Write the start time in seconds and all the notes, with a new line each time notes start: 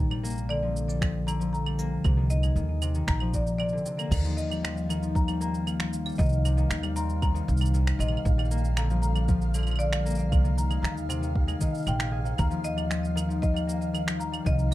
Already playing: A#3 C4
0.00 A#1
0.11 G3, claves
0.23 A#3, cabasa
0.27 cabasa
0.30 cabasa
0.32 cabasa
0.35 cabasa
0.38 cabasa
0.49 D3 D5, claves
0.62 F3
0.76 cabasa
0.88 G3, cabasa
1.01 F3, finger snap, kick, cabasa, claves
1.27 D3 A#5, cabasa, claves
1.40 F3, cabasa
1.53 A#5, cabasa
1.66 G3, claves
1.79 A#3, cabasa
2.04 C2 C3, kick, cabasa, claves
2.17 D#3
2.30 D#5, cabasa
2.43 G#3, cabasa, claves
2.56 D#2 D#3, cabasa
2.82 C3, cabasa, claves
2.95 D#3, cabasa
3.07 A#1 A#5, finger snap, kick, cabasa
3.20 F3, claves
3.34 C3 D5, kick, cabasa
3.47 cabasa
3.58 C3 D5, cabasa, claves
3.69 D3, cabasa
3.77 cabasa
3.85 C3, cabasa
3.98 A#3, cabasa, claves
4.11 D#2 D#3 F5, kick, crash, cabasa, claves
4.24 F3, cabasa
4.37 D#5, cabasa
4.50 G3, cabasa, claves
4.63 F3, finger snap, cabasa
4.77 cabasa
4.89 D#3, cabasa, claves
5.02 F3, cabasa
5.15 A#5, kick, cabasa
5.28 G3, cabasa, claves
5.41 A#3 A#5, cabasa
5.54 cabasa
5.66 D#3, cabasa, claves
5.80 F3, finger snap, cabasa
5.93 cabasa
6.05 G3, cabasa, claves
6.09 cabasa
6.12 cabasa
6.15 D#3 D#5, cabasa
6.19 C2, kick, cabasa
6.22 cabasa
6.25 cabasa
6.29 cabasa
6.33 cabasa
6.45 C3, cabasa, claves
6.57 D#3, cabasa
6.70 D#2, finger snap, cabasa
6.83 G3, cabasa, claves
6.96 C4 A#5, cabasa
7.09 cabasa
7.22 C3 A#5, kick, cabasa, claves
7.34 D#3, cabasa
7.48 C2, kick, cabasa
7.57 G3, cabasa, claves
7.61 cabasa
7.65 cabasa
7.74 D#3, cabasa
7.87 finger snap, cabasa
7.99 A#1 C3 D#5, cabasa, claves
8.08 D#3, claves
8.17 claves
8.25 A#1, kick, cabasa
8.38 G3, cabasa, claves
8.45 cabasa
8.51 A#3, cabasa
8.58 cabasa
8.64 cabasa
8.77 D3 A#5, finger snap, cabasa, claves
8.90 F3, cabasa
9.02 A#5, cabasa
9.15 G3, cabasa, claves
9.28 F3, kick, cabasa
9.42 cabasa
9.54 D3, cabasa, claves
9.59 claves
9.63 F3, claves
9.67 cabasa, claves
9.71 claves
9.76 D5, claves
9.80 cabasa
9.93 G3, finger snap, cabasa, claves
10.05 A#3, cabasa
10.10 cabasa
10.15 cabasa
10.19 cabasa
10.31 C2 C3, kick, cabasa, claves
10.44 D#3, cabasa
10.58 A#5, cabasa
10.70 G#3, cabasa, claves
10.82 D#2 D#3 A#5, finger snap, cabasa
10.97 cabasa
11.09 C3, cabasa, claves
11.21 D#3, cabasa
11.36 kick
11.47 G#3, cabasa, claves
11.60 D#3 D#5, kick, cabasa
11.75 cabasa
11.77 cabasa
11.80 cabasa
11.82 cabasa
11.84 A#1 C3, cabasa, claves
11.87 G5, cabasa
11.99 C3, finger snap, cabasa
12.12 G#4
12.25 D#3, cabasa
12.37 D#2 D#3 A#5, kick, cabasa, claves
12.51 F3, cabasa
12.64 D#5, cabasa
12.77 G3, cabasa, claves
12.90 F3, finger snap, cabasa
13.05 cabasa
13.15 D#3, cabasa, claves
13.29 F3, cabasa
13.42 D#5, kick, cabasa
13.54 G3, cabasa, claves
13.67 A#3, cabasa
13.82 cabasa
13.93 D#3, cabasa, claves
14.06 F3, finger snap, cabasa
14.20 A#5, cabasa
14.32 G3, cabasa, claves
14.44 C2 D#3 D#5, kick, cabasa
14.59 cabasa
14.71 C3